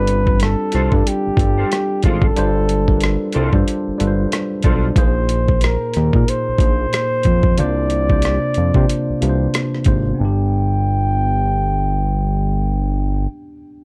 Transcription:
Already playing: analog synth bass G1, tine electric piano G3 C4 D4 F4 A4, flugelhorn B4
0.07 closed hi-hat
0.27 kick
0.40 flugelhorn A4, cross-stick, closed hi-hat
0.72 analog synth bass C2, clean electric guitar F4 A4 C5, cross-stick, closed hi-hat
0.92 analog synth bass G2, tine electric piano G3 D4 F4 A4 D5, kick
1.07 flugelhorn G4, closed hi-hat
1.27 analog synth bass G1
1.37 analog synth bass G1, tine electric piano G3 D4 F4 A4 D5, kick, closed hi-hat
1.58 clean electric guitar F4 A4 C5
1.71 muted clean electric guitar stroke, cross-stick, closed hi-hat
2.03 analog synth bass G#1, clean electric guitar F4 A4 C5, flugelhorn F4, kick, closed hi-hat
2.22 flugelhorn A4, kick
2.36 analog synth bass G1, tine electric piano G3 D4 F4 A4 C5, closed hi-hat
2.69 closed hi-hat
2.88 tine electric piano G3 D4 F4 A4 A#4, kick
2.97 tine electric piano B4, closed hi-hat
3.04 cross-stick
3.33 analog synth bass C2, clean electric guitar F4 A4 C5, closed hi-hat
3.53 analog synth bass G2, tine electric piano G3 D4 F4 A4 C5, kick
3.68 closed hi-hat
3.88 analog synth bass G1
3.98 analog synth bass G1, tine electric piano G3 D4 F4 A4 B4, closed hi-hat
4.07 tine electric piano C5
4.32 muted clean electric guitar stroke, cross-stick, closed hi-hat
4.63 analog synth bass B1, tine electric piano G3 D4 F4 A4, clean electric guitar F4 A4 C5, kick, closed hi-hat
4.67 tine electric piano C5
4.96 analog synth bass A#1, tine electric piano A#2 A#3 D#4 G#4 C5, flugelhorn C5, kick, closed hi-hat
5.29 closed hi-hat
5.48 kick
5.61 flugelhorn A#4, cross-stick, closed hi-hat
5.94 analog synth bass D#2, cross-stick, closed hi-hat
6.13 tine electric piano A#2 A#3 D#4 G#4 A#4, analog synth bass A#2, kick
6.28 flugelhorn C5, closed hi-hat
6.49 analog synth bass A#1
6.58 analog synth bass A#1, tine electric piano A#2 A#3 D#4 G#4 C5, kick, closed hi-hat
6.93 cross-stick, closed hi-hat
7.23 analog synth bass F2, kick, closed hi-hat
7.43 kick
7.58 analog synth bass C2, tine electric piano C3 A#3 D4 F4 C5, flugelhorn D5, closed hi-hat
7.90 closed hi-hat
8.09 tine electric piano C3 A#3 D4 F4 C5, kick
8.22 cross-stick, closed hi-hat
8.54 analog synth bass F2, closed hi-hat
8.74 tine electric piano C3 A#3 D4 F4 C5, analog synth bass C3, kick
8.89 closed hi-hat
9.10 analog synth bass C2
9.20 analog synth bass C2, tine electric piano C3 A#3 D4 F4 B4, closed hi-hat
9.29 tine electric piano C5
9.54 cross-stick, closed hi-hat
9.75 cross-stick
9.84 analog synth bass G#1, tine electric piano C3 A#3 D4 F4 C5, kick, closed hi-hat
10.14 tine electric piano B3
10.20 analog synth bass G1, tine electric piano D4, flugelhorn G5
10.25 tine electric piano G4

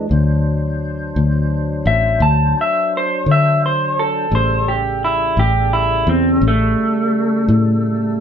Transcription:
0.09 fingered electric bass D2, tonewheel organ F#3 D4 C5
1.16 fingered electric bass D2
1.86 fingered electric bass A1, clean electric guitar E5
2.20 fingered electric bass D2, clean electric guitar A5
2.61 clean electric guitar E5
2.97 clean electric guitar C5
3.26 fingered electric bass D3
3.31 clean electric guitar E5
3.66 clean electric guitar C5
3.99 clean electric guitar A4
4.30 fingered electric bass A1, tonewheel organ C#3 G3 A4
4.35 clean electric guitar C5
4.68 clean electric guitar G4
5.04 clean electric guitar E4
5.37 fingered electric bass A1, clean electric guitar G4
5.73 clean electric guitar E4
6.07 fingered electric bass E2, clean electric guitar C4
6.41 fingered electric bass A1
6.48 clean electric guitar A3
7.48 fingered electric bass A2

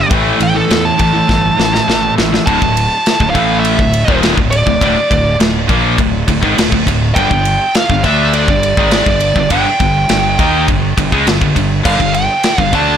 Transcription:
Already playing: distorted electric guitar D3
0.10 fingered electric bass A1, distorted electric guitar A2 E3 A3, kick, ride
0.40 fingered electric bass A1, distorted electric guitar A2 E3, lead electric guitar G5, ride
0.56 distorted electric guitar A2 E3, lead electric guitar A4
0.70 fingered electric bass E2, distorted electric guitar A2 E3, snare, ride
0.85 lead electric guitar A5
0.99 fingered electric bass A1, distorted electric guitar A2 E3, overdriven electric guitar A3, lead electric guitar A5, kick, ride
1.14 distorted electric guitar A2 E3
1.29 fingered electric bass G1, distorted electric guitar A2 E3, kick, snare
1.59 fingered electric bass A1, distorted electric guitar A2 E3, snare
1.74 distorted electric guitar A2 E3, snare
1.88 fingered electric bass A1, distorted electric guitar A2 E3, overdriven electric guitar A3, snare
2.18 fingered electric bass A1, distorted electric guitar A2 E3, snare
2.32 distorted electric guitar A2 E3, snare
2.46 fingered electric bass D1, distorted electric guitar D2 A2, lead electric guitar A5, kick, ride
2.62 fingered electric bass D1, distorted electric guitar D2 A2, kick
2.77 ride
3.06 snare, ride
3.20 fingered electric bass D1, distorted electric guitar D2 A2, kick
3.30 distorted electric guitar A2, lead electric guitar F5
3.34 fingered electric bass A1, distorted electric guitar E3 A3, kick, ride
3.60 lead electric guitar E5
3.65 ride
3.78 fingered electric bass D1, distorted electric guitar D2 A2, kick
3.93 ride
4.08 fingered electric bass D#1, distorted electric guitar D#2 A#2 D#3, kick
4.23 snare, ride
4.37 fingered electric bass D1, distorted electric guitar D2 A2, kick
4.51 lead electric guitar D5, ride
4.67 fingered electric bass D1, distorted electric guitar D2 A2, kick
4.81 fingered electric bass D1, distorted electric guitar D2 A2, kick, ride
5.11 fingered electric bass D1, distorted electric guitar D2 A2, kick, ride
5.40 fingered electric bass D1, distorted electric guitar D2 A2, snare, ride
5.69 fingered electric bass A#1, distorted electric guitar A#2 F3 A#3, kick, ride
5.98 fingered electric bass D1, distorted electric guitar D2 A2, kick, ride
6.28 fingered electric bass D1, distorted electric guitar D2 A2, kick, ride
6.41 fingered electric bass G#1, distorted electric guitar G#2 D#3, kick
6.58 fingered electric bass D1, distorted electric guitar D2 A2, snare, ride
6.72 fingered electric bass D1, distorted electric guitar D2 A2, kick
6.87 fingered electric bass D1, distorted electric guitar D2 A2, kick, ride
7.15 fingered electric bass G1, distorted electric guitar G2 D3, lead electric guitar G5, kick, ride
7.31 fingered electric bass G1, distorted electric guitar G2 D3, kick
7.45 ride
7.75 lead electric guitar F5, snare, ride
7.90 fingered electric bass G1, distorted electric guitar G2 D3, kick
8.04 fingered electric bass D2, distorted electric guitar D3 A3 D4, lead electric guitar E5, kick, ride
8.33 lead electric guitar D5, ride
8.48 fingered electric bass G1, distorted electric guitar G2 D3, kick
8.63 ride
8.77 fingered electric bass G#1, distorted electric guitar G#2 D#3 G#3, kick
8.91 lead electric guitar D5, snare, ride
9.06 fingered electric bass G1, distorted electric guitar G2 D3, kick
9.20 ride
9.36 fingered electric bass G1, distorted electric guitar G2 D3, kick
9.50 fingered electric bass G1, distorted electric guitar G2 D3, lead electric guitar G5, kick, ride
9.80 fingered electric bass G1, distorted electric guitar G2 D3, kick, ride
10.09 fingered electric bass G1, distorted electric guitar G2 D3, snare, ride
10.39 fingered electric bass D#2, distorted electric guitar D#3 A#3 D#4, kick, ride
10.68 fingered electric bass G1, distorted electric guitar G2 D3, kick, ride
10.98 fingered electric bass G1, distorted electric guitar G2 D3, kick, ride
11.12 fingered electric bass C#2, distorted electric guitar C#3 G#3, kick
11.27 fingered electric bass G1, distorted electric guitar G2 D3, snare, ride
11.41 fingered electric bass G1, distorted electric guitar G2 D3, kick
11.55 fingered electric bass G1, distorted electric guitar G2 D3, kick, ride
11.83 fingered electric bass G1, distorted electric guitar G2 D3, lead electric guitar F5, kick, crash
11.99 fingered electric bass G1, distorted electric guitar G2 D3, kick
12.14 lead electric guitar G5, ride
12.43 snare, ride
12.58 fingered electric bass G1, distorted electric guitar G2 D3, lead electric guitar F5, kick
12.73 fingered electric bass D2, distorted electric guitar D3 A3 D4, lead electric guitar A5, kick, ride

